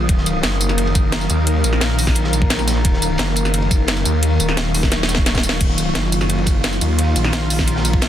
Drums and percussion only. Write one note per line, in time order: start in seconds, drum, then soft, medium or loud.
0.09 kick loud
0.09 closed hi-hat medium
0.09 ride medium
0.18 snare medium
0.26 closed hi-hat medium
0.26 ride medium
0.26 tambourine medium
0.43 snare loud
0.43 closed hi-hat medium
0.43 ride medium
0.53 ride soft
0.61 closed hi-hat medium
0.61 ride medium
0.61 tambourine medium
0.69 snare soft
0.69 tambourine soft
0.78 closed hi-hat medium
0.78 ride medium
0.87 ride soft
0.95 kick loud
0.95 closed hi-hat medium
0.95 ride medium
0.95 tambourine medium
1.12 snare loud
1.12 closed hi-hat medium
1.12 ride medium
1.21 ride soft
1.21 tambourine soft
1.29 closed hi-hat medium
1.29 ride medium
1.29 tambourine medium
1.47 closed hi-hat medium
1.47 ride medium
1.64 closed hi-hat medium
1.64 ride medium
1.64 tambourine medium
1.73 snare medium
1.81 snare loud
1.81 closed hi-hat medium
1.81 ride medium
1.90 ride soft
1.99 open hi-hat medium
1.99 ride medium
1.99 tambourine medium
2.07 kick medium
2.07 snare soft
2.07 tambourine soft
2.15 closed hi-hat medium
2.15 ride medium
2.24 snare soft
2.33 closed hi-hat medium
2.33 ride medium
2.33 tambourine medium
2.42 kick loud
2.50 snare loud
2.50 closed hi-hat medium
2.50 ride medium
2.59 snare soft
2.59 ride soft
2.59 tambourine soft
2.67 snare loud
2.67 closed hi-hat medium
2.67 ride medium
2.67 tambourine medium
2.77 ride soft
2.85 kick loud
2.85 closed hi-hat medium
2.85 ride medium
2.93 snare soft
3.02 closed hi-hat medium
3.02 ride medium
3.02 tambourine medium
3.18 snare loud
3.18 closed hi-hat loud
3.18 ride medium
3.28 ride soft
3.36 closed hi-hat medium
3.36 ride medium
3.36 tambourine medium
3.45 snare soft
3.45 tambourine soft
3.54 closed hi-hat loud
3.54 ride medium
3.62 ride soft
3.71 kick loud
3.71 closed hi-hat medium
3.71 ride medium
3.71 tambourine medium
3.88 snare loud
3.88 closed hi-hat medium
3.88 ride medium
3.96 ride soft
3.96 tambourine soft
4.05 closed hi-hat medium
4.05 ride medium
4.05 tambourine medium
4.23 closed hi-hat loud
4.23 ride medium
4.40 closed hi-hat medium
4.40 ride medium
4.40 tambourine medium
4.49 snare medium
4.57 snare loud
4.57 closed hi-hat loud
4.57 ride medium
4.66 ride soft
4.74 open hi-hat medium
4.74 ride medium
4.74 tambourine medium
4.83 kick medium
4.83 snare soft
4.83 ride soft
4.83 tambourine soft
4.92 snare medium
4.92 closed hi-hat loud
5.03 snare medium
5.08 snare loud
5.08 closed hi-hat medium
5.08 ride medium
5.08 tambourine medium
5.15 kick loud
5.15 snare medium
5.15 ride soft
5.26 snare medium
5.26 closed hi-hat medium
5.26 ride medium
5.34 kick medium
5.34 snare loud
5.34 ride medium
5.34 tambourine soft
5.38 snare loud
5.43 closed hi-hat medium
5.43 ride soft
5.43 tambourine medium
5.49 snare loud
5.49 ride medium
5.61 kick loud
5.61 closed hi-hat loud
5.61 crash medium
5.61 ride medium
5.69 snare soft
5.78 closed hi-hat medium
5.78 ride medium
5.78 tambourine medium
5.95 snare loud
5.95 closed hi-hat medium
5.95 ride medium
6.03 ride soft
6.12 closed hi-hat medium
6.12 ride medium
6.12 tambourine medium
6.21 snare soft
6.21 tambourine soft
6.29 closed hi-hat medium
6.29 ride medium
6.38 ride soft
6.46 kick loud
6.46 closed hi-hat medium
6.46 ride medium
6.46 tambourine medium
6.64 snare loud
6.64 closed hi-hat medium
6.64 ride medium
6.72 ride soft
6.72 tambourine soft
6.81 closed hi-hat medium
6.81 ride medium
6.81 tambourine medium
6.99 closed hi-hat loud
6.99 ride medium
7.16 closed hi-hat medium
7.16 ride medium
7.16 tambourine medium
7.24 snare medium
7.33 snare loud
7.33 closed hi-hat loud
7.33 ride loud
7.42 ride soft
7.50 open hi-hat medium
7.50 ride medium
7.50 tambourine medium
7.59 kick medium
7.59 snare soft
7.59 tambourine soft
7.67 closed hi-hat medium
7.67 ride medium
7.76 snare medium
7.85 closed hi-hat medium
7.85 ride medium
7.85 tambourine medium
7.93 kick loud
8.01 snare loud
8.01 closed hi-hat medium
8.01 ride medium